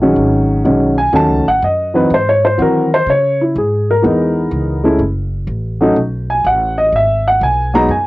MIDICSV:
0, 0, Header, 1, 3, 480
1, 0, Start_track
1, 0, Key_signature, 5, "minor"
1, 0, Tempo, 482703
1, 1135, Time_signature, 4, 2, 24, 8
1, 8024, End_track
2, 0, Start_track
2, 0, Title_t, "Grand piano"
2, 0, Program_c, 0, 0
2, 15, Note_on_c, 0, 51, 69
2, 16, Note_on_c, 0, 54, 65
2, 20, Note_on_c, 0, 56, 65
2, 28, Note_on_c, 0, 61, 76
2, 622, Note_off_c, 0, 51, 0
2, 622, Note_off_c, 0, 54, 0
2, 624, Note_off_c, 0, 56, 0
2, 628, Note_off_c, 0, 61, 0
2, 639, Note_on_c, 0, 51, 64
2, 645, Note_on_c, 0, 54, 57
2, 649, Note_on_c, 0, 56, 54
2, 656, Note_on_c, 0, 61, 70
2, 938, Note_off_c, 0, 51, 0
2, 941, Note_off_c, 0, 54, 0
2, 943, Note_off_c, 0, 56, 0
2, 946, Note_off_c, 0, 61, 0
2, 973, Note_on_c, 0, 80, 86
2, 1120, Note_on_c, 0, 51, 62
2, 1121, Note_on_c, 0, 54, 57
2, 1127, Note_off_c, 0, 80, 0
2, 1129, Note_on_c, 0, 57, 59
2, 1130, Note_on_c, 0, 61, 67
2, 1151, Note_on_c, 0, 81, 101
2, 1418, Note_off_c, 0, 51, 0
2, 1419, Note_off_c, 0, 54, 0
2, 1423, Note_off_c, 0, 57, 0
2, 1423, Note_off_c, 0, 61, 0
2, 1456, Note_off_c, 0, 81, 0
2, 1472, Note_on_c, 0, 78, 92
2, 1617, Note_off_c, 0, 78, 0
2, 1632, Note_on_c, 0, 75, 81
2, 1927, Note_on_c, 0, 52, 60
2, 1930, Note_on_c, 0, 54, 57
2, 1936, Note_on_c, 0, 60, 57
2, 1937, Note_off_c, 0, 75, 0
2, 1943, Note_on_c, 0, 63, 68
2, 1944, Note_on_c, 0, 71, 85
2, 2073, Note_off_c, 0, 52, 0
2, 2075, Note_off_c, 0, 54, 0
2, 2078, Note_off_c, 0, 60, 0
2, 2081, Note_off_c, 0, 63, 0
2, 2093, Note_off_c, 0, 71, 0
2, 2129, Note_on_c, 0, 72, 81
2, 2267, Note_off_c, 0, 72, 0
2, 2277, Note_on_c, 0, 73, 87
2, 2421, Note_off_c, 0, 73, 0
2, 2433, Note_on_c, 0, 72, 78
2, 2559, Note_on_c, 0, 52, 61
2, 2567, Note_on_c, 0, 54, 54
2, 2569, Note_on_c, 0, 60, 58
2, 2572, Note_on_c, 0, 66, 69
2, 2579, Note_off_c, 0, 72, 0
2, 2605, Note_on_c, 0, 70, 84
2, 2858, Note_off_c, 0, 52, 0
2, 2861, Note_off_c, 0, 54, 0
2, 2862, Note_off_c, 0, 60, 0
2, 2864, Note_off_c, 0, 66, 0
2, 2904, Note_off_c, 0, 70, 0
2, 2922, Note_on_c, 0, 72, 86
2, 3062, Note_off_c, 0, 72, 0
2, 3081, Note_on_c, 0, 73, 93
2, 3381, Note_off_c, 0, 73, 0
2, 3394, Note_on_c, 0, 64, 64
2, 3538, Note_off_c, 0, 64, 0
2, 3560, Note_on_c, 0, 68, 69
2, 3861, Note_off_c, 0, 68, 0
2, 3884, Note_on_c, 0, 70, 83
2, 3998, Note_on_c, 0, 52, 63
2, 4006, Note_on_c, 0, 56, 59
2, 4013, Note_on_c, 0, 59, 60
2, 4017, Note_on_c, 0, 63, 70
2, 4745, Note_off_c, 0, 52, 0
2, 4749, Note_off_c, 0, 56, 0
2, 4752, Note_off_c, 0, 59, 0
2, 4754, Note_off_c, 0, 63, 0
2, 4808, Note_on_c, 0, 56, 72
2, 4810, Note_on_c, 0, 57, 69
2, 4821, Note_on_c, 0, 61, 67
2, 4823, Note_on_c, 0, 64, 82
2, 4947, Note_off_c, 0, 70, 0
2, 4953, Note_off_c, 0, 56, 0
2, 4954, Note_off_c, 0, 57, 0
2, 4960, Note_off_c, 0, 61, 0
2, 4961, Note_off_c, 0, 64, 0
2, 5774, Note_on_c, 0, 54, 78
2, 5776, Note_on_c, 0, 57, 68
2, 5782, Note_on_c, 0, 61, 69
2, 5786, Note_on_c, 0, 63, 86
2, 5916, Note_off_c, 0, 54, 0
2, 5917, Note_off_c, 0, 57, 0
2, 5920, Note_off_c, 0, 61, 0
2, 5922, Note_off_c, 0, 63, 0
2, 6264, Note_on_c, 0, 80, 89
2, 6412, Note_off_c, 0, 80, 0
2, 6428, Note_on_c, 0, 78, 87
2, 6735, Note_off_c, 0, 78, 0
2, 6740, Note_on_c, 0, 75, 90
2, 6890, Note_off_c, 0, 75, 0
2, 6918, Note_on_c, 0, 76, 92
2, 7220, Note_off_c, 0, 76, 0
2, 7236, Note_on_c, 0, 78, 86
2, 7378, Note_off_c, 0, 78, 0
2, 7390, Note_on_c, 0, 80, 92
2, 7694, Note_on_c, 0, 54, 77
2, 7696, Note_off_c, 0, 80, 0
2, 7702, Note_on_c, 0, 56, 70
2, 7704, Note_on_c, 0, 59, 70
2, 7707, Note_on_c, 0, 82, 104
2, 7709, Note_on_c, 0, 63, 83
2, 7836, Note_off_c, 0, 54, 0
2, 7840, Note_off_c, 0, 56, 0
2, 7841, Note_off_c, 0, 59, 0
2, 7843, Note_off_c, 0, 63, 0
2, 7853, Note_off_c, 0, 82, 0
2, 7863, Note_on_c, 0, 80, 85
2, 8024, Note_off_c, 0, 80, 0
2, 8024, End_track
3, 0, Start_track
3, 0, Title_t, "Upright bass"
3, 0, Program_c, 1, 32
3, 0, Note_on_c, 1, 34, 93
3, 152, Note_off_c, 1, 34, 0
3, 158, Note_on_c, 1, 32, 82
3, 631, Note_off_c, 1, 32, 0
3, 648, Note_on_c, 1, 35, 89
3, 1115, Note_off_c, 1, 35, 0
3, 1121, Note_on_c, 1, 39, 86
3, 1282, Note_off_c, 1, 39, 0
3, 1282, Note_on_c, 1, 37, 54
3, 1445, Note_off_c, 1, 37, 0
3, 1451, Note_on_c, 1, 33, 61
3, 1601, Note_off_c, 1, 33, 0
3, 1613, Note_on_c, 1, 42, 92
3, 2079, Note_off_c, 1, 42, 0
3, 2091, Note_on_c, 1, 44, 86
3, 2558, Note_off_c, 1, 44, 0
3, 2572, Note_on_c, 1, 51, 90
3, 3038, Note_off_c, 1, 51, 0
3, 3046, Note_on_c, 1, 49, 87
3, 3515, Note_off_c, 1, 49, 0
3, 3534, Note_on_c, 1, 44, 89
3, 3999, Note_off_c, 1, 44, 0
3, 4018, Note_on_c, 1, 40, 84
3, 4481, Note_off_c, 1, 40, 0
3, 4485, Note_on_c, 1, 37, 89
3, 4955, Note_off_c, 1, 37, 0
3, 4961, Note_on_c, 1, 30, 91
3, 5433, Note_off_c, 1, 30, 0
3, 5440, Note_on_c, 1, 33, 87
3, 5912, Note_off_c, 1, 33, 0
3, 5928, Note_on_c, 1, 35, 86
3, 6396, Note_off_c, 1, 35, 0
3, 6407, Note_on_c, 1, 33, 90
3, 6876, Note_off_c, 1, 33, 0
3, 6884, Note_on_c, 1, 32, 84
3, 7354, Note_off_c, 1, 32, 0
3, 7369, Note_on_c, 1, 35, 95
3, 7837, Note_off_c, 1, 35, 0
3, 7843, Note_on_c, 1, 42, 85
3, 8024, Note_off_c, 1, 42, 0
3, 8024, End_track
0, 0, End_of_file